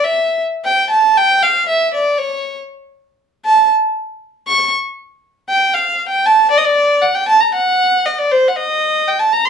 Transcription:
0, 0, Header, 1, 2, 480
1, 0, Start_track
1, 0, Tempo, 511509
1, 613, Time_signature, 2, 2, 24, 8
1, 8909, End_track
2, 0, Start_track
2, 0, Title_t, "Violin"
2, 0, Program_c, 0, 40
2, 39, Note_on_c, 0, 76, 80
2, 386, Note_off_c, 0, 76, 0
2, 607, Note_on_c, 0, 79, 96
2, 833, Note_off_c, 0, 79, 0
2, 848, Note_on_c, 0, 81, 94
2, 1102, Note_on_c, 0, 79, 109
2, 1116, Note_off_c, 0, 81, 0
2, 1343, Note_on_c, 0, 77, 96
2, 1357, Note_off_c, 0, 79, 0
2, 1577, Note_off_c, 0, 77, 0
2, 1585, Note_on_c, 0, 76, 87
2, 1801, Note_off_c, 0, 76, 0
2, 1822, Note_on_c, 0, 74, 77
2, 2050, Note_on_c, 0, 73, 81
2, 2064, Note_off_c, 0, 74, 0
2, 2410, Note_off_c, 0, 73, 0
2, 3243, Note_on_c, 0, 81, 91
2, 3469, Note_off_c, 0, 81, 0
2, 4203, Note_on_c, 0, 85, 103
2, 4428, Note_off_c, 0, 85, 0
2, 5158, Note_on_c, 0, 79, 91
2, 5387, Note_on_c, 0, 77, 84
2, 5402, Note_off_c, 0, 79, 0
2, 5708, Note_off_c, 0, 77, 0
2, 5714, Note_on_c, 0, 79, 84
2, 5873, Note_on_c, 0, 81, 95
2, 5887, Note_off_c, 0, 79, 0
2, 6102, Note_off_c, 0, 81, 0
2, 6108, Note_on_c, 0, 74, 100
2, 6174, Note_on_c, 0, 75, 85
2, 6189, Note_off_c, 0, 74, 0
2, 6242, Note_on_c, 0, 74, 89
2, 6256, Note_off_c, 0, 75, 0
2, 6588, Note_on_c, 0, 78, 80
2, 6602, Note_off_c, 0, 74, 0
2, 6709, Note_on_c, 0, 79, 92
2, 6723, Note_off_c, 0, 78, 0
2, 6831, Note_off_c, 0, 79, 0
2, 6837, Note_on_c, 0, 81, 94
2, 6949, Note_on_c, 0, 82, 80
2, 6963, Note_off_c, 0, 81, 0
2, 7077, Note_off_c, 0, 82, 0
2, 7083, Note_on_c, 0, 78, 96
2, 7565, Note_on_c, 0, 75, 77
2, 7579, Note_off_c, 0, 78, 0
2, 7683, Note_on_c, 0, 74, 83
2, 7697, Note_off_c, 0, 75, 0
2, 7805, Note_on_c, 0, 72, 93
2, 7819, Note_off_c, 0, 74, 0
2, 7962, Note_on_c, 0, 78, 61
2, 7976, Note_off_c, 0, 72, 0
2, 8039, Note_on_c, 0, 75, 92
2, 8053, Note_off_c, 0, 78, 0
2, 8520, Note_on_c, 0, 79, 89
2, 8534, Note_off_c, 0, 75, 0
2, 8629, Note_on_c, 0, 81, 87
2, 8643, Note_off_c, 0, 79, 0
2, 8755, Note_on_c, 0, 82, 98
2, 8769, Note_off_c, 0, 81, 0
2, 8873, Note_on_c, 0, 84, 81
2, 8887, Note_off_c, 0, 82, 0
2, 8909, Note_off_c, 0, 84, 0
2, 8909, End_track
0, 0, End_of_file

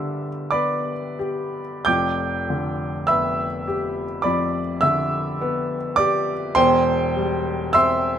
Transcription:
0, 0, Header, 1, 2, 480
1, 0, Start_track
1, 0, Key_signature, 1, "major"
1, 0, Tempo, 1242236
1, 204, Tempo, 1345291
1, 684, Time_signature, 4, 2, 24, 8
1, 684, Tempo, 1217039
1, 1164, Tempo, 1165049
1, 3264, End_track
2, 0, Start_track
2, 0, Title_t, "Upright piano"
2, 0, Program_c, 0, 0
2, 0, Control_c, 0, 64, 127
2, 0, Note_on_c, 0, 50, 46
2, 0, Note_on_c, 0, 55, 48
2, 0, Note_on_c, 0, 59, 48
2, 0, Note_on_c, 0, 67, 50
2, 0, Note_on_c, 0, 74, 60
2, 0, Note_on_c, 0, 76, 60
2, 0, Note_on_c, 0, 83, 55
2, 0, Note_on_c, 0, 86, 74
2, 0, Note_on_c, 0, 88, 73
2, 109, Note_off_c, 0, 55, 0
2, 187, Note_off_c, 0, 76, 0
2, 195, Note_off_c, 0, 86, 0
2, 195, Note_on_c, 0, 86, 81
2, 199, Note_off_c, 0, 83, 0
2, 199, Note_on_c, 0, 83, 62
2, 200, Note_off_c, 0, 74, 0
2, 200, Note_off_c, 0, 88, 0
2, 200, Note_on_c, 0, 74, 63
2, 206, Note_off_c, 0, 59, 0
2, 206, Note_on_c, 0, 59, 55
2, 344, Note_off_c, 0, 50, 0
2, 441, Note_off_c, 0, 67, 0
2, 441, Note_on_c, 0, 67, 52
2, 590, Note_off_c, 0, 59, 0
2, 668, Note_off_c, 0, 74, 0
2, 668, Note_off_c, 0, 83, 0
2, 674, Note_off_c, 0, 86, 0
2, 675, Note_on_c, 0, 91, 88
2, 679, Note_on_c, 0, 86, 77
2, 681, Note_on_c, 0, 79, 68
2, 682, Note_on_c, 0, 29, 57
2, 684, Note_off_c, 0, 67, 0
2, 686, Note_on_c, 0, 41, 63
2, 690, Control_c, 0, 64, 0
2, 755, Control_c, 0, 64, 127
2, 931, Note_on_c, 0, 50, 46
2, 1145, Note_off_c, 0, 86, 0
2, 1146, Note_off_c, 0, 79, 0
2, 1155, Note_on_c, 0, 88, 92
2, 1159, Note_off_c, 0, 91, 0
2, 1160, Note_on_c, 0, 76, 74
2, 1161, Note_on_c, 0, 83, 65
2, 1166, Note_on_c, 0, 59, 52
2, 1308, Note_off_c, 0, 50, 0
2, 1405, Note_on_c, 0, 67, 57
2, 1549, Note_off_c, 0, 59, 0
2, 1625, Note_off_c, 0, 76, 0
2, 1626, Note_off_c, 0, 29, 0
2, 1626, Note_off_c, 0, 83, 0
2, 1628, Note_off_c, 0, 41, 0
2, 1630, Note_on_c, 0, 86, 73
2, 1636, Note_on_c, 0, 83, 62
2, 1637, Note_on_c, 0, 74, 59
2, 1639, Note_off_c, 0, 88, 0
2, 1642, Note_on_c, 0, 41, 59
2, 1787, Note_off_c, 0, 67, 0
2, 1862, Note_off_c, 0, 74, 0
2, 1862, Note_off_c, 0, 83, 0
2, 1871, Note_on_c, 0, 88, 95
2, 1875, Note_off_c, 0, 86, 0
2, 1875, Note_on_c, 0, 76, 82
2, 1881, Note_on_c, 0, 50, 56
2, 2121, Note_on_c, 0, 59, 68
2, 2262, Note_off_c, 0, 50, 0
2, 2337, Note_off_c, 0, 76, 0
2, 2347, Note_on_c, 0, 86, 100
2, 2350, Note_on_c, 0, 74, 69
2, 2352, Note_off_c, 0, 88, 0
2, 2357, Note_on_c, 0, 67, 66
2, 2501, Note_off_c, 0, 59, 0
2, 2577, Note_off_c, 0, 74, 0
2, 2580, Note_off_c, 0, 41, 0
2, 2589, Note_on_c, 0, 84, 112
2, 2592, Note_off_c, 0, 86, 0
2, 2593, Note_on_c, 0, 72, 86
2, 2593, Note_on_c, 0, 79, 91
2, 2597, Note_off_c, 0, 67, 0
2, 2597, Note_on_c, 0, 28, 77
2, 2600, Note_on_c, 0, 40, 85
2, 2603, Control_c, 0, 64, 0
2, 2665, Control_c, 0, 64, 127
2, 2843, Note_on_c, 0, 55, 62
2, 3067, Note_off_c, 0, 72, 0
2, 3067, Note_off_c, 0, 79, 0
2, 3075, Note_on_c, 0, 88, 110
2, 3076, Note_off_c, 0, 84, 0
2, 3081, Note_on_c, 0, 76, 84
2, 3082, Note_on_c, 0, 84, 83
2, 3088, Note_on_c, 0, 60, 63
2, 3230, Note_off_c, 0, 55, 0
2, 3264, Note_off_c, 0, 28, 0
2, 3264, Note_off_c, 0, 40, 0
2, 3264, Note_off_c, 0, 60, 0
2, 3264, Note_off_c, 0, 76, 0
2, 3264, Note_off_c, 0, 84, 0
2, 3264, Note_off_c, 0, 88, 0
2, 3264, End_track
0, 0, End_of_file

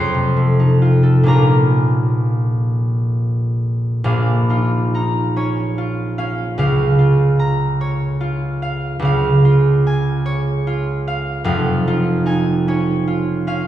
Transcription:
0, 0, Header, 1, 2, 480
1, 0, Start_track
1, 0, Key_signature, -5, "minor"
1, 0, Tempo, 895522
1, 676, Time_signature, 6, 3, 24, 8
1, 677, Tempo, 927357
1, 2117, Tempo, 878477
1, 2597, Tempo, 823045
1, 5477, Tempo, 803213
1, 7755, End_track
2, 0, Start_track
2, 0, Title_t, "Harp"
2, 0, Program_c, 0, 46
2, 0, Note_on_c, 0, 41, 91
2, 0, Note_on_c, 0, 65, 72
2, 0, Note_on_c, 0, 72, 87
2, 0, Note_on_c, 0, 77, 89
2, 0, Note_on_c, 0, 84, 111
2, 0, Note_on_c, 0, 89, 127
2, 77, Note_on_c, 0, 48, 63
2, 196, Note_on_c, 0, 57, 66
2, 319, Note_on_c, 0, 63, 70
2, 432, Note_off_c, 0, 65, 0
2, 438, Note_on_c, 0, 65, 62
2, 553, Note_on_c, 0, 69, 60
2, 662, Note_on_c, 0, 46, 76
2, 670, Note_on_c, 0, 58, 62
2, 672, Note_off_c, 0, 65, 0
2, 673, Note_on_c, 0, 61, 61
2, 677, Note_on_c, 0, 34, 72
2, 679, Note_on_c, 0, 65, 59
2, 685, Note_on_c, 0, 82, 97
2, 692, Note_off_c, 0, 89, 0
2, 693, Note_on_c, 0, 70, 68
2, 695, Note_off_c, 0, 41, 0
2, 696, Note_off_c, 0, 84, 0
2, 697, Note_off_c, 0, 48, 0
2, 697, Note_off_c, 0, 69, 0
2, 698, Note_off_c, 0, 57, 0
2, 698, Note_off_c, 0, 72, 0
2, 699, Note_off_c, 0, 77, 0
2, 701, Note_off_c, 0, 63, 0
2, 2108, Note_off_c, 0, 34, 0
2, 2113, Note_off_c, 0, 46, 0
2, 2114, Note_on_c, 0, 34, 81
2, 2117, Note_on_c, 0, 46, 89
2, 2122, Note_on_c, 0, 77, 78
2, 2359, Note_off_c, 0, 65, 0
2, 2363, Note_on_c, 0, 63, 59
2, 2367, Note_on_c, 0, 65, 70
2, 2565, Note_off_c, 0, 63, 0
2, 2603, Note_off_c, 0, 82, 0
2, 2608, Note_on_c, 0, 63, 61
2, 2611, Note_on_c, 0, 82, 69
2, 2729, Note_off_c, 0, 58, 0
2, 2732, Note_off_c, 0, 61, 0
2, 2754, Note_off_c, 0, 70, 0
2, 2814, Note_off_c, 0, 63, 0
2, 2853, Note_on_c, 0, 61, 70
2, 2857, Note_on_c, 0, 73, 77
2, 3089, Note_off_c, 0, 65, 0
2, 3096, Note_on_c, 0, 65, 66
2, 3323, Note_off_c, 0, 77, 0
2, 3327, Note_off_c, 0, 61, 0
2, 3330, Note_on_c, 0, 77, 77
2, 3334, Note_on_c, 0, 61, 64
2, 3561, Note_off_c, 0, 77, 0
2, 3561, Note_on_c, 0, 37, 76
2, 3565, Note_on_c, 0, 49, 86
2, 3570, Note_on_c, 0, 77, 79
2, 3573, Note_off_c, 0, 34, 0
2, 3575, Note_off_c, 0, 46, 0
2, 3793, Note_off_c, 0, 65, 0
2, 3800, Note_on_c, 0, 65, 69
2, 4030, Note_off_c, 0, 82, 0
2, 4037, Note_on_c, 0, 82, 80
2, 4272, Note_off_c, 0, 73, 0
2, 4279, Note_on_c, 0, 73, 74
2, 4504, Note_off_c, 0, 65, 0
2, 4511, Note_on_c, 0, 65, 70
2, 4747, Note_off_c, 0, 77, 0
2, 4754, Note_on_c, 0, 77, 76
2, 4968, Note_off_c, 0, 37, 0
2, 4971, Note_on_c, 0, 37, 83
2, 4980, Note_off_c, 0, 49, 0
2, 4980, Note_off_c, 0, 77, 0
2, 4987, Note_on_c, 0, 49, 86
2, 5002, Note_on_c, 0, 77, 80
2, 5020, Note_off_c, 0, 82, 0
2, 5229, Note_off_c, 0, 65, 0
2, 5236, Note_on_c, 0, 65, 73
2, 5480, Note_on_c, 0, 80, 78
2, 5612, Note_off_c, 0, 61, 0
2, 5705, Note_off_c, 0, 73, 0
2, 5713, Note_on_c, 0, 73, 84
2, 5953, Note_off_c, 0, 65, 0
2, 5960, Note_on_c, 0, 65, 79
2, 6195, Note_off_c, 0, 77, 0
2, 6202, Note_on_c, 0, 77, 84
2, 6420, Note_off_c, 0, 77, 0
2, 6422, Note_on_c, 0, 29, 88
2, 6427, Note_on_c, 0, 41, 93
2, 6429, Note_on_c, 0, 77, 85
2, 6455, Note_off_c, 0, 37, 0
2, 6456, Note_off_c, 0, 49, 0
2, 6673, Note_off_c, 0, 65, 0
2, 6679, Note_on_c, 0, 63, 65
2, 6681, Note_on_c, 0, 65, 77
2, 6885, Note_off_c, 0, 63, 0
2, 6905, Note_off_c, 0, 80, 0
2, 6909, Note_on_c, 0, 63, 66
2, 6913, Note_on_c, 0, 80, 83
2, 7122, Note_off_c, 0, 63, 0
2, 7156, Note_off_c, 0, 73, 0
2, 7161, Note_on_c, 0, 61, 81
2, 7163, Note_on_c, 0, 73, 81
2, 7390, Note_off_c, 0, 65, 0
2, 7397, Note_on_c, 0, 65, 73
2, 7627, Note_off_c, 0, 77, 0
2, 7628, Note_off_c, 0, 61, 0
2, 7633, Note_on_c, 0, 61, 69
2, 7636, Note_on_c, 0, 77, 80
2, 7755, Note_off_c, 0, 29, 0
2, 7755, Note_off_c, 0, 41, 0
2, 7755, Note_off_c, 0, 61, 0
2, 7755, Note_off_c, 0, 65, 0
2, 7755, Note_off_c, 0, 73, 0
2, 7755, Note_off_c, 0, 77, 0
2, 7755, Note_off_c, 0, 80, 0
2, 7755, End_track
0, 0, End_of_file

